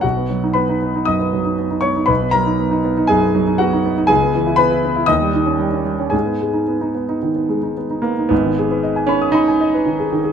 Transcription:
<<
  \new Staff \with { instrumentName = "Grand piano" } { \time 4/4 \key b \major \tempo 4 = 117 <fis' fis''>4 <b' b''>4 <dis'' dis'''>4. <cis'' cis'''>8 | <b' b''>8 <ais' ais''>4. <gis' gis''>4 <fis' fis''>4 | \key gis \minor <gis' gis''>4 <b' b''>4 <dis'' dis'''>2 | <gis' gis''>2. r8 ais8 |
b4. cis'8 dis'2 | }
  \new Staff \with { instrumentName = "Grand piano" } { \time 4/4 \key b \major b,,16 b16 fis16 dis'16 b16 dis'16 b16 dis'16 fis,16 b16 fis16 dis'16 b16 dis'16 b16 dis'16 | b,,16 b16 fis16 dis'16 b16 dis'16 b16 dis'16 fis,16 b16 fis16 dis'16 b16 dis'16 b16 dis'16 | \key gis \minor cis,16 b16 e16 e'16 b16 e'16 b16 e'16 dis,16 g16 dis16 cis'16 g16 cis'16 g16 cis'16 | gis,16 b16 gis16 dis'16 b16 dis'16 b16 dis'16 dis16 b16 gis16 dis'16 b16 dis'16 b16 dis'16 |
<gis,, gis,>16 dis16 gis'16 b'16 dis''16 gis''16 b''16 dis'''16 b''16 gis''16 dis''16 b'16 dis16 gis'16 dis16 gis'16 | }
>>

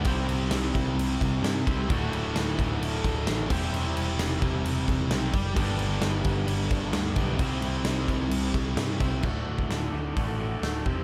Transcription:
<<
  \new Staff \with { instrumentName = "Distorted electric guitar" } { \time 4/4 \key d \mixolydian \tempo 4 = 131 <c g c' e' g' c''>2.~ <c g c' e' g' c''>8 <c g c' e' g' c''>8 | <d, a, d a fis'>2.~ <d, a, d a fis'>8 <c g c' e' g' c''>8~ | <c g c' e' g' c''>2. <c g c' e' g' c''>8 r8 | <g, d g b d' g'>2.~ <g, d g b d' g'>8 <g, d g b d' g'>8 |
<c g c' e' g' c''>2.~ <c g c' e' g' c''>8 <c g c' e' g' c''>8 | <d, a, d a fis'>2 <d, a, d a fis'>4. <c g c' e' g' c''>8 | }
  \new Staff \with { instrumentName = "Distorted electric guitar" } { \time 4/4 \key d \mixolydian <c g c' e' g' c''>1 | <d, a, d a fis'>2.~ <d, a, d a fis'>8 <c g c' e' g' c''>8~ | <c g c' e' g' c''>2.~ <c g c' e' g' c''>8 r8 | <g, d g b d' g'>1 |
<c g c' e' g' c''>1 | r1 | }
  \new Staff \with { instrumentName = "Clean electric guitar" } { \clef bass \time 4/4 \key d \mixolydian r1 | r1 | r1 | r1 |
r1 | d,4 d8 a,8 d8 a,8 a8 c8 | }
  \new Staff \with { instrumentName = "Picked electric bass" } { \clef bass \time 4/4 \key d \mixolydian c,8 c,8 c,8 c,8 c,8 c,8 g,8 c,8 | d,,8 d,,8 d,,8 d,,8 d,,8 d,,8 a,,8 e,,8 | e,,8 e,,8 e,,8 e,,8 e,,8 e,,8 b,,8 fis,,8 | g,,8 g,,8 g,,8 g,,8 g,,8 g,,8 d,8 b,,8 |
c,8 c,8 c,8 c,8 c,8 c,8 g,8 c,8 | d,,8 d,,8 d,,8 d,8 a,,4 d,,8 e,,8 | }
  \new DrumStaff \with { instrumentName = "Drums" } \drummode { \time 4/4 <cymc bd>8 cymc8 <cymc sn>8 <cymc bd>8 cymc8 <cymc bd>8 <cymc sn>8 <cymc bd>8 | <cymc bd>8 cymc8 <cymc sn>8 <cymc bd>8 cymc8 <cymc bd>8 <cymc sn>8 <cymc bd>8 | cymc8 cymc8 <cymc sn>8 <cymc bd>8 cymc8 <cymc bd>8 <cymc sn>8 <cymc bd>8 | <cymc bd>8 cymc8 <cymc sn>8 <cymc bd>8 cymc8 <cymc bd>8 <cymc sn>8 <cymc bd>8 |
<cymc bd>8 cymc8 <cymc sn>8 <cymc bd>8 cymc8 <cymc bd>8 <cymc sn>8 <cymc bd>8 | <cymc bd>8. bd16 <hho sn>4 <hho bd>4 <hho sn>8 bd8 | }
>>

